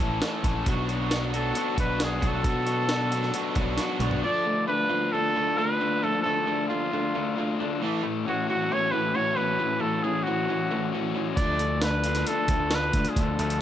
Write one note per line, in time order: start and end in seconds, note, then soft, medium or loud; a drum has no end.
0.00 0.20 A1 medium
0.00 0.45 A2 medium
0.00 0.19 E3 medium
0.00 0.21 A3 medium
0.00 0.22 C#4 medium
0.00 0.23 A4 medium
0.20 0.64 E3 medium
0.20 0.48 A3 medium
0.20 0.45 C#4 medium
0.20 0.44 A4 medium
0.20 snare loud
0.20 closed hi-hat medium
0.43 0.64 A#1 medium
0.43 0.66 C#4 medium
0.43 0.68 A4 medium
0.43 kick medium
0.43 closed hi-hat medium
0.48 0.67 A3 medium
0.65 1.52 B1 medium
0.65 1.09 B2 medium
0.65 1.09 F#3 medium
0.65 0.91 B3 medium
0.65 0.89 D4 medium
0.65 0.88 F#4 medium
0.65 kick medium
0.65 closed hi-hat medium
0.88 1.10 B3 soft
0.88 1.11 D4 medium
0.88 1.12 F#4 medium
0.88 closed hi-hat medium
1.10 1.77 B2 medium
1.10 1.52 F#3 medium
1.10 1.36 B3 medium
1.10 1.35 D4 medium
1.10 1.33 F#4 medium
1.10 snare medium
1.10 closed hi-hat medium
1.33 1.53 B3 soft
1.33 1.54 D4 medium
1.33 1.55 F#4 medium
1.33 1.76 A4 medium
1.33 closed hi-hat medium
1.52 1.77 F#3 medium
1.52 1.76 B3 medium
1.52 1.76 D4 medium
1.52 1.74 F#4 medium
1.52 closed hi-hat medium
1.75 2.20 B1 medium
1.75 2.23 B2 medium
1.75 1.97 F#3 medium
1.75 1.98 B3 medium
1.75 2.00 D4 medium
1.75 1.99 F#4 medium
1.75 kick medium
1.75 closed hi-hat medium
1.79 2.04 B4 medium
1.98 2.41 F#3 medium
1.98 2.23 B3 medium
1.98 2.23 D4 medium
1.98 2.20 F#4 medium
1.98 snare medium
1.98 closed hi-hat medium
2.03 2.29 G#4 medium
2.21 2.43 B1 medium
2.21 2.42 B3 medium
2.21 2.43 D4 medium
2.21 2.44 F#4 medium
2.21 kick medium
2.21 closed hi-hat medium
2.28 3.81 A4 medium
2.41 2.88 B2 medium
2.41 3.30 B2 medium
2.41 2.87 F#3 medium
2.41 2.66 B3 medium
2.41 2.65 D4 medium
2.41 2.63 F#4 medium
2.41 kick medium
2.41 closed hi-hat medium
2.64 2.89 B3 soft
2.64 2.89 D4 soft
2.64 2.90 F#4 medium
2.64 closed hi-hat soft
2.89 3.34 B2 medium
2.89 3.32 F#3 medium
2.89 3.14 B3 medium
2.89 3.12 D4 medium
2.89 3.10 F#4 medium
2.89 snare medium
2.89 closed hi-hat medium
3.11 3.33 B3 soft
3.11 3.34 D4 medium
3.11 3.35 F#4 medium
3.11 closed hi-hat medium
3.23 snare soft
3.33 3.57 F#3 medium
3.33 3.55 B3 medium
3.33 3.54 D4 medium
3.33 3.54 F#4 medium
3.33 closed hi-hat medium
3.55 3.77 B1 medium
3.55 4.02 B2 medium
3.55 3.77 F#3 medium
3.55 3.78 B3 medium
3.55 3.79 D4 medium
3.55 3.80 F#4 medium
3.55 kick medium
3.55 closed hi-hat medium
3.78 4.22 F#3 medium
3.78 4.01 B3 medium
3.78 3.99 D4 medium
3.78 snare medium
3.78 closed hi-hat medium
3.82 3.98 F#4 medium
3.99 4.21 B1 medium
3.99 4.22 B3 soft
3.99 4.22 D4 medium
3.99 4.21 F#4 medium
3.99 closed hi-hat medium
3.99 mid tom medium
4.11 floor tom medium
4.22 4.43 D3 medium
4.22 5.35 F3 medium
4.22 4.44 A3 medium
4.22 4.45 D4 medium
4.22 4.65 D5 medium
4.45 4.65 D3 medium
4.45 4.66 A3 medium
4.68 4.88 D3 medium
4.68 4.88 A3 medium
4.68 5.10 D4 medium
4.68 5.14 B4 medium
4.89 5.10 D3 medium
4.89 5.10 A3 medium
4.89 5.55 F4 medium
5.11 5.34 D3 medium
5.11 5.34 A3 medium
5.11 5.78 D4 medium
5.11 5.59 A4 medium
5.36 5.56 D3 medium
5.36 5.56 A3 medium
5.56 5.78 D3 medium
5.56 5.78 A3 medium
5.56 6.68 F4 medium
5.56 6.05 B4 medium
5.79 6.00 D3 medium
5.79 6.00 A3 medium
5.79 6.45 D4 medium
6.02 6.23 D3 medium
6.02 7.14 F3 medium
6.02 6.23 A3 medium
6.02 6.21 A4 medium
6.22 6.45 D3 medium
6.22 6.64 A4 medium
6.26 6.45 A3 medium
6.46 6.67 D3 medium
6.46 6.67 A3 medium
6.46 6.90 D4 medium
6.68 6.90 D3 medium
6.68 6.90 A3 medium
6.68 7.54 F4 medium
6.68 7.34 F4 medium
6.91 7.12 D3 medium
6.91 7.12 A3 medium
6.91 7.57 D4 medium
7.15 7.35 D3 medium
7.15 7.34 A3 medium
7.35 7.57 D3 medium
7.35 7.57 A3 medium
7.35 7.80 F4 medium
7.58 7.79 D3 medium
7.58 7.80 A3 medium
7.58 7.80 D4 medium
7.82 8.02 A2 medium
7.82 8.03 E3 medium
7.82 8.03 A3 medium
8.03 8.23 A2 medium
8.03 8.23 E3 medium
8.03 8.93 A3 medium
8.25 8.47 A2 medium
8.25 8.47 E3 medium
8.25 8.69 C#4 medium
8.25 8.47 F#4 medium
8.48 8.69 A2 medium
8.48 8.69 E3 medium
8.48 9.15 F#4 medium
8.48 8.74 F#4 medium
8.70 8.91 A2 medium
8.70 8.91 E3 medium
8.70 9.36 C#4 medium
8.70 8.93 C#5 loud
8.91 9.13 A2 medium
8.91 9.13 E3 medium
8.91 9.82 A3 medium
8.91 9.16 B4 medium
9.15 9.35 A2 medium
9.15 9.35 E3 medium
9.15 10.25 F#4 medium
9.15 9.37 C#5 medium
9.36 9.57 A2 medium
9.36 9.57 E3 medium
9.36 10.03 C#4 medium
9.36 9.82 B4 medium
9.59 9.78 A2 medium
9.59 9.79 E3 medium
9.80 10.01 A2 medium
9.80 10.01 E3 medium
9.80 10.70 A3 medium
9.80 10.04 A4 medium
10.03 10.24 A2 medium
10.03 10.24 E3 medium
10.03 10.47 C#4 medium
10.03 10.24 G#4 medium
10.23 10.46 A2 medium
10.23 10.92 F#4 medium
10.23 10.91 F#4 medium
10.27 10.47 E3 medium
10.48 10.69 A2 medium
10.48 10.69 E3 medium
10.48 11.15 C#4 medium
10.71 10.91 A2 medium
10.71 10.91 E3 medium
10.71 11.60 A3 medium
10.92 11.14 A2 medium
10.92 11.14 E3 medium
10.92 11.37 F#4 medium
11.15 11.35 A2 medium
11.15 11.36 E3 medium
11.15 11.38 C#4 medium
11.36 12.23 D2 medium
11.36 11.59 D3 medium
11.36 12.50 F3 medium
11.36 11.59 A3 medium
11.36 11.59 D4 medium
11.36 11.79 D5 medium
11.36 kick loud
11.36 closed hi-hat medium
11.59 11.81 D3 medium
11.59 11.81 A3 medium
11.59 closed hi-hat medium
11.81 12.03 D3 medium
11.81 12.03 A3 medium
11.81 12.26 D4 medium
11.81 12.29 B4 medium
11.81 snare loud
11.81 closed hi-hat medium
12.04 12.26 D3 medium
12.04 12.26 A3 medium
12.04 12.71 F4 medium
12.04 closed hi-hat medium
12.15 snare soft
12.15 closed hi-hat medium
12.27 12.48 D3 medium
12.27 12.48 A3 medium
12.27 12.94 D4 medium
12.27 12.76 A4 medium
12.27 closed hi-hat medium
12.48 12.91 D2 medium
12.48 12.70 D3 medium
12.48 12.70 A3 medium
12.48 kick medium
12.48 closed hi-hat medium
12.71 12.93 D3 medium
12.71 12.93 A3 medium
12.71 13.62 F4 medium
12.71 snare loud
12.71 closed hi-hat medium
12.75 13.11 B4 medium
12.93 13.04 D2 medium
12.93 13.15 D3 medium
12.93 13.15 A3 medium
12.93 13.61 D4 medium
12.93 kick medium
12.93 closed hi-hat medium
13.05 closed hi-hat medium
13.09 13.22 G#4 medium
13.16 13.37 D2 medium
13.16 13.37 D3 medium
13.16 13.62 F3 medium
13.16 13.37 A3 medium
13.16 kick medium
13.16 closed hi-hat medium
13.21 13.62 A4 medium
13.39 13.60 D2 loud
13.39 13.59 D3 medium
13.39 13.59 A3 medium
13.39 closed hi-hat medium
13.50 closed hi-hat medium